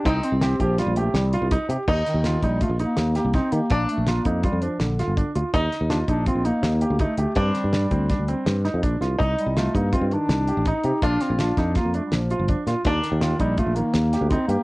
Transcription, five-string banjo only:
X:1
M:5/4
L:1/8
Q:1/4=164
K:Cdor
V:1 name="Five-string banjo"
C8- C z | E8- E2 | D8- D2 | E8- E2 |
D8- D z | E8- E2 | F8- F2 | D8- D2 |]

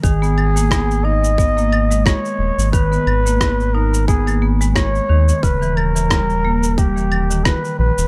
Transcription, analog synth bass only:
X:1
M:4/4
L:1/16
Q:"Swing 16ths" 1/4=89
K:none
V:1 name="Analog synth bass" clef=bass
_A,,,12 z2 _E,,, A,,,- | _A,,, z A,,,8- A,,,3 z _E,, z | _E,,,12 z2 _B,,, E,,, |]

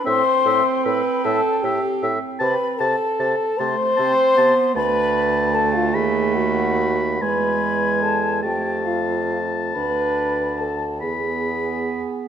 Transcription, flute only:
X:1
M:6/8
L:1/16
Q:3/8=50
K:Am
V:1 name="Flute"
c'4 b2 a2 g3 z | b2 a4 c'6 | b4 a f ^g2 ^f4 | b4 a2 g2 f3 z |
b4 a2 ^g6 |]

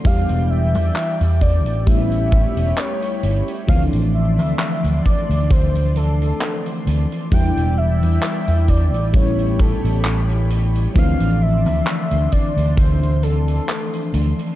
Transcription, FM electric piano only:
X:1
M:4/4
L:1/8
Q:"Swing 16ths" 1/4=66
K:Ddor
V:1 name="FM electric piano"
[E,G,B,DG]4 [G,A,B,^CE]4 | [E,F,A,CD]8 | [E,G,B,DE]4 [G,A,B,^CE]4 | [E,F,A,CD]8 |]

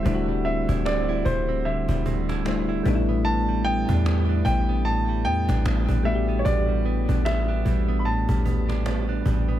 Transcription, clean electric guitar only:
X:1
M:4/4
L:1/16
Q:"Swing 16ths" 1/4=75
K:Ador
V:1 name="Clean electric guitar"
[D,G,CE] G, C E C E G, C D, G, C E C E A,, B, | A,, G, B, D B, D G, B, A,, G, B, D B, D G, B, | A,, G, B, D B, D G, B, A,, G, B, D B, D G, B, |]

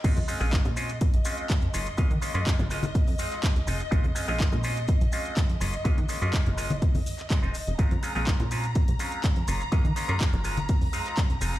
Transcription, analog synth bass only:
X:1
M:4/4
L:1/16
Q:1/4=124
K:Bbm
V:1 name="Analog synth bass" clef=bass
B,,, F,, z B,,, z B,,3 B,,, B,,, z3 F,, G,,, z | G,, E, z G,, z G,,,3 F,, F,, z3 C,, F,,, z | B,,, F,, z B,,, z B,,3 B,,, B,,, z3 F,, G,,, z | G,, E, z G,, z G,,,3 F,, F,, z3 F,,, F,,, F,,, |
B,,, F,, z B,,, z B,,3 B,,, B,,, z3 F,, G,,, z | G,, E, z G,, z G,,,3 F,, F,, z3 C,, F,,, z |]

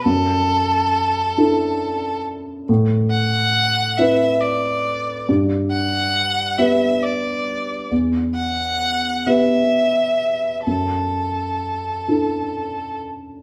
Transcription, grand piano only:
X:1
M:6/8
L:1/8
Q:3/8=46
K:Dmix
V:1 name="Grand piano"
F,,3 [DEA]3 | A,,3 [CEB]3 | G,,3 [B,GB]3 | E,,3 [B,GB]3 |
F,,3 [DEA]3 |]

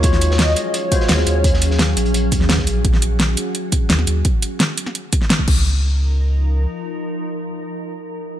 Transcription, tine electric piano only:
X:1
M:4/4
L:1/8
Q:1/4=171
K:Ebdor
V:1 name="Tine electric piano"
[A,FGd]4- [A,FGd] [A,FGc] z2 | z8 | z8 | z8 |
z8 | z8 |]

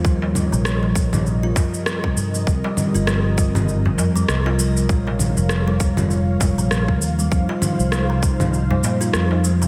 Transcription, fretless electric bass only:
X:1
M:4/4
L:1/16
Q:"Swing 16ths" 1/4=99
K:Bbdor
V:1 name="Fretless electric bass" clef=bass
E,,3 B,,,6- B,,, z4 G,,2 | C,, z2 G,,,6- G,,, F,,2 C,,4 | B,,,3 F,,,6- F,,, F,,, B,,,3 E,,2 | F,, z2 C,,6- C,, B,,2 F,,4 |]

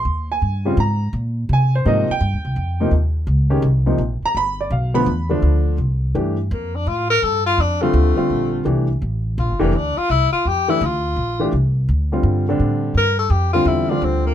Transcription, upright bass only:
X:1
M:4/4
L:1/8
Q:"Swing" 1/4=168
K:Ab
V:1 name="Upright bass" clef=bass
E,,2 G,,2 A,,2 B,,2 | C,2 A,, z (3G,, E,, C,, F,,2 | E,,2 D,,2 C,,2 B,,, z | G,,,2 =B,,,2 _F,,2 =D,,2 |
[K:Cmix] C,,2 G,,2 F,,2 A,,2 | G,,2 F,,2 D,, z B,,,2 | C,,2 A,,,2 (3B,,, G,,, F,,, D,, z | C,, z F,,2 D,,2 B,,,2 |
C,,2 D,,2 G,,2 A,,2 | G,,2 F,,2 E,,2 D,,2 |]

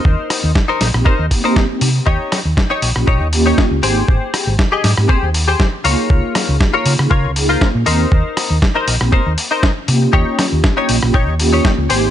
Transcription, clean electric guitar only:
X:1
M:4/4
L:1/16
Q:"Swing 16ths" 1/4=119
K:Ebmix
V:1 name="Clean electric guitar"
[EBc]4 z [EBc] z2 [EBc]2 z [EBc] z4 | [EGd]2 z3 [EGd] z2 [EGd]2 z [EGd] z2 [GAc]2- | [GAc]4 z [GAe] z2 [GAc]2 z [GAc] z2 [FBd]2- | [FBd]4 z [FBd] z2 [FBd]2 z [FBc] z2 [EBc]2- |
[EBc]4 z [EBc] z2 [EBc]2 z [EBc] z4 | [EGd]2 z3 [EGd] z2 [EGd]2 z [EGd] z2 [GAc]2 |]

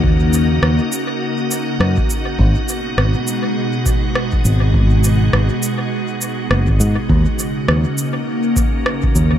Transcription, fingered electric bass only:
X:1
M:4/4
L:1/16
Q:"Swing 16ths" 1/4=102
K:Ebm
V:1 name="Fingered electric bass" clef=bass
E,,4 E,, z6 z G,, z3 | A,,, z3 A,,, z8 z A,,,2- | A,,,4 A,,, z6 z G,,, A,,, A,, z | E,, z3 E,, z8 z E,,2 |]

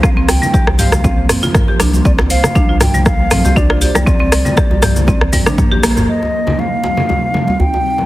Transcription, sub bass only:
X:1
M:4/4
L:1/16
Q:"Swing 16ths" 1/4=119
K:Bbmix
V:1 name="Sub bass" clef=bass
z C,, C,, z2 C,,4- C,, z4 C,,2 | C,,2 C,, z2 C,,4- C,, B,,, C,,4 C,, | z C,, C,, z2 C,,4- C,, z4 B,,, G,,, | z16 |]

